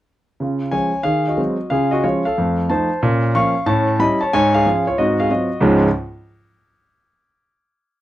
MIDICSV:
0, 0, Header, 1, 2, 480
1, 0, Start_track
1, 0, Key_signature, -5, "major"
1, 0, Tempo, 326264
1, 593, Time_signature, 4, 2, 24, 8
1, 11786, End_track
2, 0, Start_track
2, 0, Title_t, "Grand piano"
2, 0, Program_c, 0, 0
2, 590, Note_on_c, 0, 49, 61
2, 619, Note_on_c, 0, 65, 42
2, 844, Control_c, 0, 64, 127
2, 877, Note_off_c, 0, 65, 0
2, 1001, Note_off_c, 0, 49, 0
2, 1051, Note_on_c, 0, 80, 81
2, 1064, Note_on_c, 0, 73, 62
2, 1065, Note_on_c, 0, 53, 45
2, 1069, Note_on_c, 0, 56, 40
2, 1072, Note_on_c, 0, 61, 43
2, 1093, Control_c, 0, 64, 0
2, 1333, Note_off_c, 0, 53, 0
2, 1335, Note_off_c, 0, 56, 0
2, 1338, Note_off_c, 0, 61, 0
2, 1517, Note_off_c, 0, 73, 0
2, 1521, Note_on_c, 0, 77, 88
2, 1534, Note_on_c, 0, 51, 59
2, 1545, Note_off_c, 0, 80, 0
2, 1545, Note_on_c, 0, 68, 60
2, 1802, Control_c, 0, 64, 127
2, 1834, Note_off_c, 0, 68, 0
2, 1844, Note_off_c, 0, 77, 0
2, 1880, Note_on_c, 0, 75, 52
2, 1893, Note_on_c, 0, 66, 43
2, 1953, Note_off_c, 0, 51, 0
2, 2018, Note_on_c, 0, 54, 44
2, 2021, Note_on_c, 0, 56, 41
2, 2035, Note_on_c, 0, 60, 49
2, 2058, Control_c, 0, 64, 0
2, 2288, Note_off_c, 0, 54, 0
2, 2291, Note_off_c, 0, 56, 0
2, 2300, Note_off_c, 0, 60, 0
2, 2490, Note_off_c, 0, 66, 0
2, 2502, Note_on_c, 0, 77, 85
2, 2514, Note_on_c, 0, 49, 72
2, 2524, Note_on_c, 0, 68, 64
2, 2528, Note_off_c, 0, 75, 0
2, 2539, Note_on_c, 0, 65, 46
2, 2777, Control_c, 0, 64, 127
2, 2798, Note_off_c, 0, 65, 0
2, 2805, Note_off_c, 0, 68, 0
2, 2813, Note_on_c, 0, 75, 73
2, 2815, Note_off_c, 0, 77, 0
2, 2836, Note_on_c, 0, 66, 65
2, 2925, Note_off_c, 0, 49, 0
2, 2994, Note_off_c, 0, 66, 0
2, 2994, Note_off_c, 0, 75, 0
2, 2996, Note_on_c, 0, 73, 76
2, 2997, Note_on_c, 0, 53, 46
2, 3012, Note_on_c, 0, 56, 41
2, 3012, Note_on_c, 0, 65, 55
2, 3013, Control_c, 0, 64, 0
2, 3017, Note_on_c, 0, 61, 50
2, 3262, Note_off_c, 0, 53, 0
2, 3272, Note_off_c, 0, 56, 0
2, 3277, Note_off_c, 0, 61, 0
2, 3289, Note_off_c, 0, 65, 0
2, 3303, Note_off_c, 0, 73, 0
2, 3315, Note_on_c, 0, 77, 74
2, 3335, Note_on_c, 0, 69, 62
2, 3502, Note_on_c, 0, 41, 68
2, 3531, Note_on_c, 0, 57, 38
2, 3739, Control_c, 0, 64, 127
2, 3781, Note_off_c, 0, 57, 0
2, 3901, Note_off_c, 0, 41, 0
2, 3931, Note_off_c, 0, 69, 0
2, 3965, Note_off_c, 0, 77, 0
2, 3966, Note_on_c, 0, 57, 46
2, 3966, Note_on_c, 0, 81, 77
2, 3971, Note_on_c, 0, 53, 43
2, 3972, Control_c, 0, 64, 0
2, 3982, Note_on_c, 0, 63, 52
2, 3984, Note_on_c, 0, 72, 64
2, 4228, Note_off_c, 0, 57, 0
2, 4232, Note_off_c, 0, 53, 0
2, 4240, Note_off_c, 0, 63, 0
2, 4419, Note_off_c, 0, 72, 0
2, 4442, Note_off_c, 0, 81, 0
2, 4452, Note_on_c, 0, 46, 94
2, 4482, Note_on_c, 0, 61, 50
2, 4684, Control_c, 0, 64, 127
2, 4734, Note_off_c, 0, 61, 0
2, 4854, Note_off_c, 0, 46, 0
2, 4928, Note_on_c, 0, 85, 94
2, 4934, Note_on_c, 0, 53, 51
2, 4937, Control_c, 0, 64, 0
2, 4944, Note_on_c, 0, 77, 75
2, 4946, Note_on_c, 0, 58, 47
2, 4946, Note_on_c, 0, 61, 63
2, 5193, Note_off_c, 0, 53, 0
2, 5202, Note_off_c, 0, 58, 0
2, 5202, Note_off_c, 0, 61, 0
2, 5378, Note_off_c, 0, 77, 0
2, 5386, Note_on_c, 0, 45, 82
2, 5390, Note_on_c, 0, 81, 90
2, 5403, Note_off_c, 0, 85, 0
2, 5404, Note_on_c, 0, 73, 68
2, 5421, Note_on_c, 0, 61, 49
2, 5645, Control_c, 0, 64, 127
2, 5678, Note_off_c, 0, 61, 0
2, 5798, Note_off_c, 0, 45, 0
2, 5847, Note_off_c, 0, 73, 0
2, 5873, Note_off_c, 0, 81, 0
2, 5877, Note_on_c, 0, 55, 52
2, 5881, Note_on_c, 0, 83, 95
2, 5890, Note_on_c, 0, 61, 48
2, 5893, Control_c, 0, 64, 0
2, 5896, Note_on_c, 0, 64, 57
2, 5906, Note_on_c, 0, 75, 74
2, 6140, Note_off_c, 0, 55, 0
2, 6150, Note_off_c, 0, 61, 0
2, 6154, Note_off_c, 0, 64, 0
2, 6175, Note_off_c, 0, 75, 0
2, 6183, Note_off_c, 0, 83, 0
2, 6189, Note_on_c, 0, 81, 81
2, 6216, Note_on_c, 0, 73, 69
2, 6360, Note_off_c, 0, 81, 0
2, 6363, Note_off_c, 0, 73, 0
2, 6375, Note_on_c, 0, 80, 114
2, 6379, Note_on_c, 0, 44, 88
2, 6390, Note_on_c, 0, 73, 91
2, 6597, Control_c, 0, 64, 127
2, 6657, Note_off_c, 0, 73, 0
2, 6670, Note_off_c, 0, 80, 0
2, 6684, Note_on_c, 0, 77, 93
2, 6702, Note_on_c, 0, 68, 64
2, 6777, Note_off_c, 0, 44, 0
2, 6858, Control_c, 0, 64, 0
2, 6860, Note_on_c, 0, 53, 47
2, 6871, Note_on_c, 0, 61, 47
2, 6877, Note_on_c, 0, 65, 58
2, 7117, Note_off_c, 0, 53, 0
2, 7125, Note_off_c, 0, 61, 0
2, 7128, Note_off_c, 0, 68, 0
2, 7129, Note_off_c, 0, 65, 0
2, 7151, Note_off_c, 0, 77, 0
2, 7170, Note_on_c, 0, 73, 76
2, 7187, Note_on_c, 0, 65, 62
2, 7328, Note_off_c, 0, 65, 0
2, 7328, Note_on_c, 0, 75, 84
2, 7330, Note_off_c, 0, 73, 0
2, 7337, Note_on_c, 0, 44, 63
2, 7353, Note_on_c, 0, 66, 68
2, 7364, Note_on_c, 0, 60, 41
2, 7574, Control_c, 0, 64, 127
2, 7613, Note_off_c, 0, 60, 0
2, 7617, Note_off_c, 0, 66, 0
2, 7625, Note_off_c, 0, 75, 0
2, 7645, Note_on_c, 0, 77, 85
2, 7658, Note_on_c, 0, 68, 55
2, 7734, Note_off_c, 0, 44, 0
2, 7793, Note_on_c, 0, 54, 45
2, 7800, Note_on_c, 0, 60, 41
2, 7802, Note_off_c, 0, 68, 0
2, 7804, Control_c, 0, 64, 0
2, 7806, Note_off_c, 0, 77, 0
2, 7807, Note_on_c, 0, 75, 74
2, 7808, Note_on_c, 0, 66, 53
2, 7809, Note_on_c, 0, 65, 46
2, 8057, Note_off_c, 0, 54, 0
2, 8062, Note_off_c, 0, 60, 0
2, 8068, Note_off_c, 0, 65, 0
2, 8246, Note_on_c, 0, 37, 94
2, 8247, Note_off_c, 0, 66, 0
2, 8259, Note_on_c, 0, 44, 80
2, 8266, Note_on_c, 0, 53, 77
2, 8270, Note_on_c, 0, 61, 81
2, 8272, Note_on_c, 0, 65, 78
2, 8276, Note_on_c, 0, 56, 82
2, 8277, Note_on_c, 0, 73, 56
2, 8279, Note_off_c, 0, 75, 0
2, 8450, Control_c, 0, 64, 127
2, 8573, Note_off_c, 0, 37, 0
2, 8580, Note_off_c, 0, 44, 0
2, 8584, Note_off_c, 0, 53, 0
2, 8586, Note_off_c, 0, 61, 0
2, 8587, Note_off_c, 0, 65, 0
2, 8589, Note_off_c, 0, 56, 0
2, 8590, Note_off_c, 0, 73, 0
2, 8637, Control_c, 0, 64, 0
2, 11786, End_track
0, 0, End_of_file